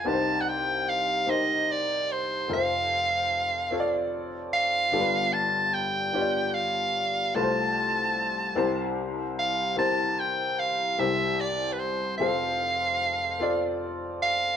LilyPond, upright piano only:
<<
  \new Staff \with { instrumentName = "Upright piano" } { \time 6/8 \key f \major \tempo 4. = 49 << { f''16 r2 r8. | r2. | r2. | r2. |
r2. | r2. | } \\ { <c' ees' g' bes' b' c''>4 r8 <c' ees' g' bes' c''>4 r8 | <c' f' a' bes' c''>4 r8 <c' f' a' des'' d''>4 r8 | <b d' f' g' a' b'>4 r8 <b d' f' g' des'' d''>4 r8 | <a c' f' a' b' c''>4 r8 <c' e' g' bes' c''>4 r8 |
<c' e' g' bes' c''>4 r8 <c' e' g' bes' c''>4 r8 | <c' f' aes' a' c''>4 r8 <c' f' a' d''>4 r8 | } >> }
  \new Staff \with { instrumentName = "Upright piano" } { \clef bass \time 6/8 \key f \major <c, c>2. | <f,, f,>2. | <g,, g,>2. | <c, c>4. <c, c>4.~ |
<c, c>4. <c, c>4. | <f,, f,>2. | }
>>